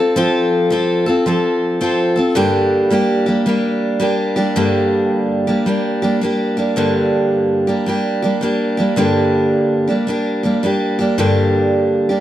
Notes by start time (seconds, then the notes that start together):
Already playing: A4
0.00 C4 F4
0.16 F3 C4 F4 A4
0.70 F3 C4 F4 A4
1.06 C4 F4 A4
1.26 F3 C4 F4 A4
1.81 F3 C4 F4 A4
2.16 C4 F4 A4
2.35 G2 D3 G3 A#3 D4 G4
2.90 G3 A#3 D4 G4
3.26 G3 A#3 D4 G4
3.46 G3 A#3 D4 G4
4.00 G3 A#3 D4 G4
4.36 G3 A#3 D4 G4
4.56 G2 D3 G3 A#3 D4 G4
5.47 G3 A#3 D4 G4
5.66 G3 A#3 D4 G4
6.02 G3 A#3 D4 G4
6.21 G3 A#3 D4 G4
6.57 G3 A#3 D4 G4
6.76 G2 D3 G3 A#3 D4 G4
7.67 G3 A#3 D4 G4
7.86 G3 A#3 D4 G4
8.22 G3 A#3 D4 G4
8.41 G3 A#3 D4 G4
8.77 G3 A#3 D4 G4
8.96 G2 D3 G3 A#3 D4 G4
9.88 G3 A#3 D4 G4
10.07 G3 A#3 D4 G4
10.43 G3 A#3 D4 G4
10.63 G3 A#3 D4 G4
10.99 G3 A#3 D4 G4
11.18 G2 D3 G3 A#3 D4 G4
12.09 G3 A#3 D4 G4